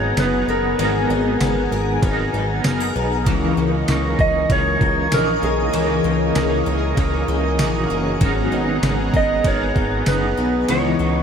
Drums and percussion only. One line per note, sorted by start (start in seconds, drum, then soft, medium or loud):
0.17 snare loud
0.17 ride medium
0.17 tambourine medium
0.79 ride medium
1.41 snare loud
1.41 ride medium
1.41 tambourine medium
2.02 kick loud
2.02 ride medium
2.64 snare loud
2.64 ride medium
2.64 tambourine medium
3.26 kick loud
3.26 ride medium
3.88 snare loud
3.88 ride soft
3.88 tambourine medium
4.19 kick loud
4.50 kick medium
4.50 ride medium
4.81 kick loud
5.12 snare loud
5.12 ride medium
5.12 tambourine medium
5.74 ride medium
6.35 snare loud
6.35 ride medium
6.35 tambourine medium
6.97 kick medium
6.97 ride medium
7.59 snare loud
7.59 ride medium
7.59 tambourine medium
8.21 kick loud
8.21 ride medium
8.83 snare loud
8.83 ride medium
8.83 tambourine medium
9.14 kick medium
9.44 kick medium
9.44 ride medium
9.76 kick loud
10.06 snare loud
10.06 ride medium
10.06 tambourine medium
10.69 ride medium